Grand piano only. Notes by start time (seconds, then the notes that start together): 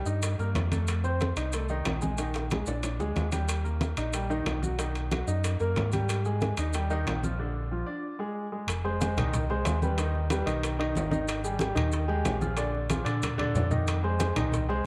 0.06 D#4 D#5
0.39 A#3 A#4
0.72 A3 A4
1.04 C4 C5
1.37 D#4 D#5
1.54 A3 A4
1.70 D#3 D#4
2.01 G#3 G#4
2.18 D#3 D#4
2.52 G#3 G#4
2.67 D4 D5
3.00 G#3 G#4
3.32 G3 G4
3.64 A#3 A#4
3.98 D#4 D#5
4.14 G3 G4
4.30 D#3 D#4
4.61 F#3 F#4
4.79 D#3 D#4
5.11 F#3 F#4
5.28 D#4 D#5
5.60 A#3 A#4
5.93 G3 G4
6.26 G#3 G#4
6.59 D#4 D#5
6.74 G3 G4
6.90 D#3 D#4
7.23 F3 F4
7.39 D3 D4
7.71 F3 F4
7.86 D4 D5
8.19 G#3 G#4
8.52 G#3 G#4
8.84 G#3 G#4 C5
9.01 G#3 G#4 C5
9.17 D#3 D#4 D#5
9.50 G#3 G#4 C5
9.82 G3 G4 B4
9.97 D#3 D#4 D#5
10.30 G3 G4 B4
10.46 D#3 D#4 D#5
10.79 D#3 D#4 D#5
11.11 D#3 D#4 D#5
11.44 G3 G4 G#4
11.60 G3 G4 G#4
11.75 D#3 D#4 D#5
12.08 G#3 G4 G#4
12.41 F3 F4 G#4
12.57 D3 D4 D5
12.89 F3 F4 G#4
13.04 D3 D4 D5
13.38 D3 D4 D5
13.71 D#3 D#4 D#5
14.03 G#3 G#4 C5
14.19 G#3 G#4 C5
14.36 D#3 D#4 D#5
14.69 G#3 G#4 C5